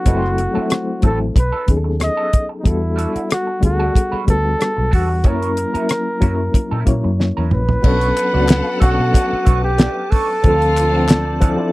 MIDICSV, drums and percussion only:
0, 0, Header, 1, 2, 480
1, 0, Start_track
1, 0, Key_signature, 2, "minor"
1, 0, Tempo, 649351
1, 41, Time_signature, 4, 2, 24, 8
1, 8665, End_track
2, 0, Start_track
2, 0, Title_t, "Drums"
2, 42, Note_on_c, 9, 42, 81
2, 44, Note_on_c, 9, 36, 87
2, 116, Note_off_c, 9, 42, 0
2, 118, Note_off_c, 9, 36, 0
2, 185, Note_on_c, 9, 37, 25
2, 259, Note_off_c, 9, 37, 0
2, 282, Note_on_c, 9, 42, 59
2, 356, Note_off_c, 9, 42, 0
2, 519, Note_on_c, 9, 42, 85
2, 531, Note_on_c, 9, 37, 108
2, 593, Note_off_c, 9, 42, 0
2, 605, Note_off_c, 9, 37, 0
2, 755, Note_on_c, 9, 42, 60
2, 762, Note_on_c, 9, 36, 75
2, 829, Note_off_c, 9, 42, 0
2, 836, Note_off_c, 9, 36, 0
2, 1003, Note_on_c, 9, 36, 91
2, 1008, Note_on_c, 9, 42, 85
2, 1077, Note_off_c, 9, 36, 0
2, 1082, Note_off_c, 9, 42, 0
2, 1241, Note_on_c, 9, 42, 57
2, 1244, Note_on_c, 9, 36, 82
2, 1315, Note_off_c, 9, 42, 0
2, 1318, Note_off_c, 9, 36, 0
2, 1479, Note_on_c, 9, 42, 75
2, 1488, Note_on_c, 9, 37, 93
2, 1553, Note_off_c, 9, 42, 0
2, 1562, Note_off_c, 9, 37, 0
2, 1723, Note_on_c, 9, 42, 61
2, 1727, Note_on_c, 9, 36, 76
2, 1797, Note_off_c, 9, 42, 0
2, 1801, Note_off_c, 9, 36, 0
2, 1962, Note_on_c, 9, 36, 96
2, 1963, Note_on_c, 9, 42, 70
2, 2036, Note_off_c, 9, 36, 0
2, 2037, Note_off_c, 9, 42, 0
2, 2207, Note_on_c, 9, 42, 61
2, 2281, Note_off_c, 9, 42, 0
2, 2334, Note_on_c, 9, 42, 44
2, 2408, Note_off_c, 9, 42, 0
2, 2443, Note_on_c, 9, 42, 84
2, 2455, Note_on_c, 9, 37, 116
2, 2517, Note_off_c, 9, 42, 0
2, 2529, Note_off_c, 9, 37, 0
2, 2680, Note_on_c, 9, 42, 55
2, 2682, Note_on_c, 9, 36, 70
2, 2754, Note_off_c, 9, 42, 0
2, 2756, Note_off_c, 9, 36, 0
2, 2923, Note_on_c, 9, 36, 89
2, 2931, Note_on_c, 9, 42, 86
2, 2997, Note_off_c, 9, 36, 0
2, 3005, Note_off_c, 9, 42, 0
2, 3163, Note_on_c, 9, 36, 77
2, 3163, Note_on_c, 9, 42, 58
2, 3237, Note_off_c, 9, 36, 0
2, 3237, Note_off_c, 9, 42, 0
2, 3405, Note_on_c, 9, 42, 73
2, 3414, Note_on_c, 9, 37, 103
2, 3479, Note_off_c, 9, 42, 0
2, 3488, Note_off_c, 9, 37, 0
2, 3644, Note_on_c, 9, 36, 74
2, 3645, Note_on_c, 9, 46, 39
2, 3718, Note_off_c, 9, 36, 0
2, 3719, Note_off_c, 9, 46, 0
2, 3873, Note_on_c, 9, 42, 75
2, 3877, Note_on_c, 9, 36, 93
2, 3947, Note_off_c, 9, 42, 0
2, 3951, Note_off_c, 9, 36, 0
2, 4010, Note_on_c, 9, 42, 43
2, 4084, Note_off_c, 9, 42, 0
2, 4118, Note_on_c, 9, 42, 66
2, 4192, Note_off_c, 9, 42, 0
2, 4250, Note_on_c, 9, 42, 44
2, 4324, Note_off_c, 9, 42, 0
2, 4355, Note_on_c, 9, 42, 85
2, 4367, Note_on_c, 9, 37, 104
2, 4429, Note_off_c, 9, 42, 0
2, 4441, Note_off_c, 9, 37, 0
2, 4595, Note_on_c, 9, 42, 58
2, 4597, Note_on_c, 9, 36, 73
2, 4669, Note_off_c, 9, 42, 0
2, 4671, Note_off_c, 9, 36, 0
2, 4835, Note_on_c, 9, 36, 85
2, 4841, Note_on_c, 9, 42, 88
2, 4909, Note_off_c, 9, 36, 0
2, 4915, Note_off_c, 9, 42, 0
2, 5076, Note_on_c, 9, 42, 57
2, 5077, Note_on_c, 9, 36, 74
2, 5150, Note_off_c, 9, 42, 0
2, 5151, Note_off_c, 9, 36, 0
2, 5324, Note_on_c, 9, 38, 45
2, 5398, Note_off_c, 9, 38, 0
2, 5553, Note_on_c, 9, 45, 71
2, 5627, Note_off_c, 9, 45, 0
2, 5682, Note_on_c, 9, 43, 79
2, 5756, Note_off_c, 9, 43, 0
2, 5794, Note_on_c, 9, 49, 83
2, 5795, Note_on_c, 9, 36, 90
2, 5868, Note_off_c, 9, 49, 0
2, 5869, Note_off_c, 9, 36, 0
2, 5923, Note_on_c, 9, 42, 45
2, 5997, Note_off_c, 9, 42, 0
2, 6037, Note_on_c, 9, 42, 70
2, 6043, Note_on_c, 9, 39, 67
2, 6111, Note_off_c, 9, 42, 0
2, 6117, Note_off_c, 9, 39, 0
2, 6271, Note_on_c, 9, 39, 90
2, 6275, Note_on_c, 9, 42, 92
2, 6287, Note_on_c, 9, 38, 121
2, 6345, Note_off_c, 9, 39, 0
2, 6349, Note_off_c, 9, 42, 0
2, 6361, Note_off_c, 9, 38, 0
2, 6517, Note_on_c, 9, 36, 86
2, 6517, Note_on_c, 9, 42, 67
2, 6590, Note_off_c, 9, 42, 0
2, 6591, Note_off_c, 9, 36, 0
2, 6758, Note_on_c, 9, 36, 97
2, 6765, Note_on_c, 9, 42, 94
2, 6832, Note_off_c, 9, 36, 0
2, 6839, Note_off_c, 9, 42, 0
2, 6996, Note_on_c, 9, 42, 68
2, 6999, Note_on_c, 9, 36, 87
2, 7070, Note_off_c, 9, 42, 0
2, 7073, Note_off_c, 9, 36, 0
2, 7232, Note_on_c, 9, 42, 78
2, 7241, Note_on_c, 9, 38, 113
2, 7248, Note_on_c, 9, 39, 90
2, 7306, Note_off_c, 9, 42, 0
2, 7315, Note_off_c, 9, 38, 0
2, 7322, Note_off_c, 9, 39, 0
2, 7478, Note_on_c, 9, 46, 47
2, 7483, Note_on_c, 9, 36, 82
2, 7552, Note_off_c, 9, 46, 0
2, 7556, Note_off_c, 9, 36, 0
2, 7715, Note_on_c, 9, 42, 79
2, 7719, Note_on_c, 9, 36, 99
2, 7789, Note_off_c, 9, 42, 0
2, 7792, Note_off_c, 9, 36, 0
2, 7848, Note_on_c, 9, 42, 41
2, 7922, Note_off_c, 9, 42, 0
2, 7960, Note_on_c, 9, 42, 60
2, 7963, Note_on_c, 9, 39, 64
2, 8034, Note_off_c, 9, 42, 0
2, 8037, Note_off_c, 9, 39, 0
2, 8194, Note_on_c, 9, 39, 90
2, 8198, Note_on_c, 9, 42, 101
2, 8210, Note_on_c, 9, 38, 108
2, 8268, Note_off_c, 9, 39, 0
2, 8272, Note_off_c, 9, 42, 0
2, 8284, Note_off_c, 9, 38, 0
2, 8438, Note_on_c, 9, 42, 66
2, 8440, Note_on_c, 9, 36, 84
2, 8512, Note_off_c, 9, 42, 0
2, 8514, Note_off_c, 9, 36, 0
2, 8665, End_track
0, 0, End_of_file